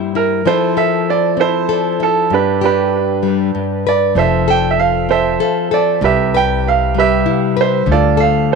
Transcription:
Already playing: nylon-string guitar G2 G3 A#3 E4 A#4, grand piano E4 C5
0.15 nylon-string guitar E4, grand piano A#4
0.45 nylon-string guitar F3 C4 E4 A4, grand piano E4 A4 C5
0.77 nylon-string guitar A4, grand piano E5
1.10 grand piano D5
1.37 nylon-string guitar C4, grand piano E4 A4 C5
1.69 nylon-string guitar A4
2.00 nylon-string guitar E4, grand piano A4
2.30 nylon-string guitar G2, grand piano D4 G4
2.34 grand piano B4
2.61 grand piano D4 G4, nylon-string guitar G4
2.65 grand piano B4
3.23 nylon-string guitar G3
3.55 nylon-string guitar G2
3.87 nylon-string guitar B4, grand piano D5
4.15 upright bass F1, nylon-string guitar F3, grand piano A4 C5 E5
4.48 nylon-string guitar A4, grand piano G5
4.71 grand piano E5
4.79 grand piano F5
5.09 nylon-string guitar C4, grand piano A4 C5 E5
5.40 nylon-string guitar A4
5.71 nylon-string guitar A4, grand piano D5
6.01 upright bass C2, nylon-string guitar C3, grand piano G4 B4
6.05 grand piano E5
6.34 nylon-string guitar B4, grand piano G5
6.68 grand piano F5
6.94 nylon-string guitar G3, grand piano G4 B4
7.00 grand piano E5
7.26 nylon-string guitar E4
7.57 nylon-string guitar B4
7.61 grand piano C5
7.86 upright bass D2, nylon-string guitar D3
7.91 grand piano F4 A4 D5
8.17 nylon-string guitar A4, grand piano F5
8.52 grand piano A4

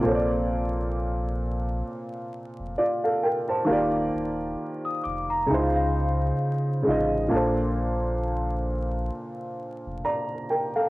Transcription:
0.01 upright piano A#2 A#3 C4
0.05 sub bass A#1, upright piano A4 C#5
0.15 upright piano D5
2.59 sub bass F1
2.78 upright piano F4 D5
3.04 upright piano A4 F5
3.23 upright piano A#4 G5
3.49 upright piano C5 A5
3.65 upright piano D#3 A#3 F4
3.69 sub bass D#1, upright piano G4 D5
4.15 sub bass D#1
4.85 celesta D#6
5.04 sub bass F1, celesta D6
5.30 celesta A#5
5.47 upright piano C#3 G#3 D#4, celesta G#5
5.51 sub bass C#2, upright piano E4 C5
5.59 upright piano F4
5.76 celesta F5
6.83 upright piano C#3 G#3
6.87 sub bass A1, upright piano D#4 F4 D#5
7.28 upright piano A#2 A#3 D4
7.33 sub bass A#1, upright piano A4 C5
9.86 sub bass F1
10.04 upright piano D5 A#5
10.50 upright piano A#4 G5
10.76 upright piano A4 F5

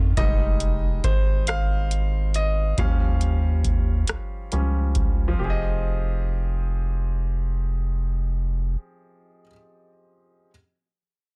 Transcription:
Already playing: analog synth bass F2, grand piano D#3 C#4 F4 G4 D#5, string section D#3 G3 A#3 C#4 F4
0.17 analog synth bass F1, grand piano G3 G#3 D#4 D#5, kick, closed hi-hat
0.60 closed hi-hat
1.04 analog synth bass G#1, grand piano C5, kick, closed hi-hat
1.47 grand piano F5, cross-stick, closed hi-hat
1.91 closed hi-hat
2.34 grand piano D#5, closed hi-hat
2.78 analog synth bass D#2, grand piano F3 G3 C#4 F5, kick, closed hi-hat
3.21 closed hi-hat
3.64 kick, closed hi-hat
4.07 analog synth bass C#2, cross-stick, closed hi-hat
4.52 analog synth bass C#2, grand piano F3 G3 C#4, closed hi-hat
4.95 kick, closed hi-hat
5.28 grand piano F3
5.34 grand piano C4
5.39 analog synth bass F1, grand piano G4
5.44 grand piano G#4
5.50 grand piano D#5

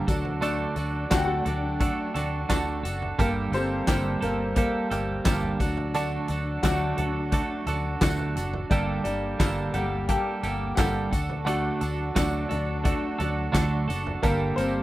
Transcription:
Already playing: grand piano A#3 A#4 C5
0.07 fingered electric bass D2, string section F#3 D4, grand piano F#3 A3 D4, clean electric guitar D4 F#4 A4, kick, closed hi-hat, tambourine
0.25 floor tom
0.41 clean electric guitar D3 A3 D4 F#4 A4, grand piano D4 D5, closed hi-hat, tambourine
0.76 fingered electric bass D2, clean electric guitar D4 F#4 A4, closed hi-hat, tambourine
1.10 fingered electric bass D2, clean electric guitar D3 A3 D4 F#4 A4, grand piano F#4 F#5, kick, snare, clap, closed hi-hat, tambourine
1.17 grand piano G5
1.25 grand piano F#4 F#5
1.45 fingered electric bass D2, clean electric guitar D4 F#4 A4, closed hi-hat, floor tom, tambourine
1.80 clean electric guitar A3 D4 F#4 A4, kick, closed hi-hat, tambourine
2.14 fingered electric bass D2, clean electric guitar D4 F#4 A4, closed hi-hat, floor tom, tambourine
2.49 fingered electric bass D2, clean electric guitar D3 A3 D4 F#4 A4, kick, snare, clap, closed hi-hat, tambourine
2.83 fingered electric bass F#1, clean electric guitar D4 F#4 A4, closed hi-hat, tambourine
3.02 floor tom
3.19 fingered electric bass G1, clean electric guitar G2 D3 G3 A#3 G4 A4, string section G3 A#3, grand piano A#3 A#4, kick, closed hi-hat, tambourine
3.52 fingered electric bass G1, grand piano G3 A4 C5, clean electric guitar G3 A#3 G4 A4, closed hi-hat, tambourine
3.56 grand piano A#3 C4
3.87 fingered electric bass G1, clean electric guitar G2 D3 G3 A#3 G4 A4, kick, snare, clap, closed hi-hat, tambourine
4.21 fingered electric bass G1, clean electric guitar G3 A#3 G4 A4, grand piano A#3 A#4, closed hi-hat, floor tom, tambourine
4.56 clean electric guitar G3 A#3 G4 A4, grand piano G3 A#3 A4 A#4, kick, closed hi-hat
4.90 fingered electric bass G1, clean electric guitar G3 A#3 G4 A4, closed hi-hat, floor tom, tambourine
5.25 fingered electric bass G1, clean electric guitar G2 D3 G3 A#3 G4 A4, kick, snare, clap, closed hi-hat, tambourine
5.43 floor tom
5.60 fingered electric bass D2, grand piano F#3 A3 D4, string section F#3 D4, clean electric guitar D4 F#4 A4, kick, closed hi-hat, tambourine
5.77 floor tom
5.94 clean electric guitar D3 A3 D4 F#4 A4, grand piano D4 D5, closed hi-hat, tambourine
6.28 fingered electric bass D2, clean electric guitar D4 F#4 A4, closed hi-hat, tambourine
6.63 fingered electric bass D2, clean electric guitar D3 A3 D4 F#4 A4, grand piano F#3 A3 D4 F#4 F#5, kick, snare, clap, closed hi-hat, tambourine
6.97 fingered electric bass D2, clean electric guitar D4 F#4 A4, closed hi-hat, floor tom
7.32 clean electric guitar A3 D4 F#4 A4, kick, closed hi-hat, tambourine
7.66 fingered electric bass D2, clean electric guitar D4 F#4 A4, closed hi-hat, floor tom, tambourine
8.01 fingered electric bass D2, clean electric guitar D3 A3 D4 F#4 A4, kick, snare, clap, closed hi-hat, tambourine
8.19 floor tom
8.36 fingered electric bass F#1, clean electric guitar D4 F#4 A4, closed hi-hat, tambourine
8.53 floor tom
8.70 fingered electric bass G1, clean electric guitar G2 D3 G3 A#3 G4 A4, string section G3 A#3, grand piano D4 D5, kick, closed hi-hat, tambourine
9.04 fingered electric bass G1, clean electric guitar G3 A#3 G4 A4, grand piano D4 D5, closed hi-hat, tambourine
9.39 fingered electric bass G1, clean electric guitar G2 D3 G3 A#3 G4 A4, kick, snare, clap, closed hi-hat, tambourine
9.74 fingered electric bass G1, grand piano G3 A#3 G4 A4 F#5, clean electric guitar G3 A#3 G4 A4, closed hi-hat, floor tom, tambourine
10.08 clean electric guitar G3 A#3 G4 A4, grand piano G4 G5, kick, closed hi-hat, tambourine
10.43 fingered electric bass G1, clean electric guitar G3 A#3 G4 A4, closed hi-hat, floor tom, tambourine
10.75 fingered electric bass G1, clean electric guitar G2 D3 G3 A#3 G4 A4, grand piano A4 F#5, kick, snare, clap, closed hi-hat, tambourine
11.11 fingered electric bass D2, string section F#3 D4, clean electric guitar D4 F#4 A4, kick, closed hi-hat, tambourine
11.29 floor tom
11.45 clean electric guitar D3 A3 D4 F#4 A4, grand piano F#4 F#5, closed hi-hat, tambourine
11.81 fingered electric bass D2, clean electric guitar D4 F#4 A4, closed hi-hat, tambourine
12.15 fingered electric bass D2, clean electric guitar D3 A3 D4 F#4 A4, grand piano F#3 A3 D4, kick, snare, clap, closed hi-hat, tambourine
12.49 fingered electric bass D2, clean electric guitar D4 F#4 A4, grand piano D4 D5, closed hi-hat, floor tom, tambourine
12.84 clean electric guitar A3 D4 F#4 A4, grand piano D5, kick, closed hi-hat, tambourine
12.88 grand piano D4
13.18 fingered electric bass D2, grand piano F#3 A3 D4, clean electric guitar D4 F#4 A4, closed hi-hat, floor tom, tambourine
13.52 fingered electric bass D2, clean electric guitar D3 A3 D4 F#4 A4, kick, snare, clap, closed hi-hat, tambourine
13.88 fingered electric bass F#1, clean electric guitar D4 F#4 A4, closed hi-hat, tambourine
14.07 floor tom
14.23 fingered electric bass G1, clean electric guitar G2 D3 G3 A#3 G4 A4, string section G3 A#3, grand piano A#3 A#4, kick, closed hi-hat, tambourine
14.56 fingered electric bass G1, clean electric guitar G3 A#3 G4 A4, grand piano C4 C5, closed hi-hat, tambourine

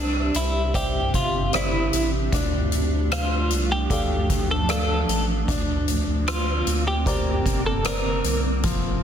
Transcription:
Already playing: sub bass C2, ambient pad C3 C4 D4 G4 E5, upright piano C4, clean electric guitar D4
0.34 sub bass C2, clean electric guitar E4, closed hi-hat
0.74 clean electric guitar G4, upright piano C5 D5 E5, kick, closed hi-hat
1.14 sub bass G1, clean electric guitar F4, kick, closed hi-hat
1.53 sub bass G1, clean electric guitar E4, upright piano C5 D5 E5, cross-stick, closed hi-hat
1.93 sub bass A1, closed hi-hat
2.32 sub bass D2, ambient pad F3 A3, upright piano D4, kick, closed hi-hat
2.72 closed hi-hat
3.12 clean electric guitar F4, cross-stick, closed hi-hat
3.51 sub bass C2, closed hi-hat
3.72 clean electric guitar G4
3.90 sub bass D2, upright piano A4 D5 F5, kick, closed hi-hat
4.30 kick, closed hi-hat
4.51 clean electric guitar A4
4.69 upright piano A4 D5 F5, clean electric guitar A4, cross-stick, closed hi-hat
5.08 sub bass A1, closed hi-hat
5.48 sub bass D2, ambient pad D3 A#3 C4, upright piano D4, kick, closed hi-hat
5.88 closed hi-hat
6.08 sub bass D2
6.28 clean electric guitar F4, cross-stick, closed hi-hat
6.67 sub bass D2, closed hi-hat
6.88 clean electric guitar G4
7.06 upright piano A#4 C5 D5, kick, closed hi-hat
7.46 sub bass F1, kick, closed hi-hat
7.66 clean electric guitar A4
7.85 sub bass F1, upright piano A#4 C5 D5, clean electric guitar A#4, cross-stick, closed hi-hat
8.24 sub bass C2, closed hi-hat
8.63 sub bass F1, upright piano F3, ambient pad F3 A3, kick, closed hi-hat

